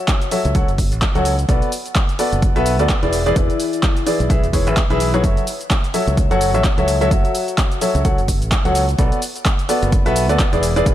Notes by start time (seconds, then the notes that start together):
Already playing: F#3 F#4 A4 C#5 E5
0.08 kick, clap, closed hi-hat, shaker
0.21 closed hi-hat, shaker
0.31 F#3 F#4 A4 C#5 E5, open hi-hat, shaker
0.45 C#2, closed hi-hat, shaker
0.55 F#3 F#4 A4 C#5 F#5, kick, closed hi-hat, shaker
0.68 F#1, closed hi-hat, shaker
0.78 kick, open hi-hat, shaker
0.92 A1, closed hi-hat, shaker
1.02 kick, clap, closed hi-hat, shaker
1.15 C#2 F#3 F#4 A4 C#5 F#5, closed hi-hat, shaker
1.25 open hi-hat, shaker
1.39 closed hi-hat, shaker
1.49 B1 B3 F#4 A4 B4 D5, kick, closed hi-hat, shaker
1.62 closed hi-hat, shaker
1.72 open hi-hat, shaker
1.86 closed hi-hat, shaker
1.95 kick, clap, closed hi-hat, shaker
2.09 closed hi-hat, shaker
2.19 B3 F#4 A4 B4 D5, open hi-hat, shaker
2.33 F#1, closed hi-hat, shaker
2.42 kick, closed hi-hat, shaker
2.56 B1 B3 F#4 A4 B4 E5, closed hi-hat, shaker
2.66 open hi-hat, shaker
2.79 D2 B3 F#4 A4 B4 D5, closed hi-hat, shaker
2.89 kick, clap, closed hi-hat, shaker
3.03 E1 E3 E4 G#4 B4 D5, closed hi-hat, shaker
3.13 open hi-hat, shaker
3.26 E3 E4 G#4 B4 D5, closed hi-hat, shaker
3.36 E1 E3 E4 G#4 B4 D5, kick, closed hi-hat, shaker
3.50 closed hi-hat, shaker
3.60 open hi-hat, shaker
3.73 closed hi-hat, shaker
3.83 kick, clap, closed hi-hat, shaker
3.97 closed hi-hat, shaker
4.07 E3 E4 G#4 B4 D5, open hi-hat, shaker
4.20 B1, closed hi-hat, shaker
4.30 E3 E4 G#4 B4 E5, kick, closed hi-hat, shaker
4.43 E1, closed hi-hat, shaker
4.53 E3 E4 G#4 B4 C#5, kick, open hi-hat, shaker
4.67 G#1 E3 E4 G#4 B4 E5, closed hi-hat, shaker
4.77 kick, clap, closed hi-hat, shaker
4.90 B1 E3 E4 G#4 B4 E5, closed hi-hat, shaker
5.00 open hi-hat, shaker
5.14 F#3 E4 G#4 B4 C#5, closed hi-hat, shaker
5.24 F#1 F#3 F#4 A4 C#5 E5, kick, closed hi-hat, shaker
5.37 closed hi-hat, shaker
5.47 open hi-hat, shaker
5.61 closed hi-hat, shaker
5.71 kick, clap, closed hi-hat, shaker
5.84 closed hi-hat, shaker
5.94 F#3 F#4 A4 C#5 E5, open hi-hat, shaker
6.07 C#2, closed hi-hat, shaker
6.17 kick, closed hi-hat, shaker
6.31 F#1 F#3 F#4 A4 C#5 F#5, closed hi-hat, shaker
6.41 open hi-hat, shaker
6.54 A1 F#3 F#4 A4 C#5 E5, closed hi-hat, shaker
6.64 kick, clap, closed hi-hat, shaker
6.78 C#2 F#3 F#4 A4 C#5 E5, closed hi-hat, shaker
6.88 open hi-hat, shaker
7.01 F#3 F#4 A4 C#5 E5, closed hi-hat, shaker
7.11 F#1 F#3 F#4, kick, closed hi-hat, shaker
7.25 closed hi-hat, shaker
7.35 open hi-hat, shaker
7.48 closed hi-hat, shaker
7.58 kick, clap, closed hi-hat, shaker
7.72 closed hi-hat, shaker
7.81 F#3 F#4 A4 C#5 E5, open hi-hat, shaker
7.95 C#2, closed hi-hat, shaker
8.05 F#3 F#4 A4 C#5 F#5, kick, closed hi-hat, shaker
8.18 F#1, closed hi-hat, shaker
8.28 kick, open hi-hat, shaker
8.42 A1, closed hi-hat, shaker
8.52 kick, clap, closed hi-hat, shaker
8.65 C#2 F#3 F#4 A4 C#5 F#5, closed hi-hat, shaker
8.75 open hi-hat, shaker
8.89 closed hi-hat, shaker
8.99 B1 B3 F#4 A4 B4 D5, kick, closed hi-hat, shaker
9.12 closed hi-hat, shaker
9.22 open hi-hat, shaker
9.36 closed hi-hat, shaker
9.45 kick, clap, closed hi-hat, shaker
9.59 closed hi-hat, shaker
9.69 B3 F#4 A4 B4 D5, open hi-hat, shaker
9.82 F#1, closed hi-hat, shaker
9.92 kick, closed hi-hat, shaker
10.06 B1 B3 F#4 A4 B4 E5, closed hi-hat, shaker
10.16 open hi-hat, shaker
10.29 D2 B3 F#4 A4 B4 D5, closed hi-hat, shaker
10.39 kick, clap, closed hi-hat, shaker
10.53 E1 E3 E4 G#4 B4 D5, closed hi-hat, shaker
10.63 open hi-hat, shaker
10.76 E3 E4 G#4 B4 D5, closed hi-hat, shaker
10.86 E1 E3 E4 G#4 B4 D5, kick, closed hi-hat, shaker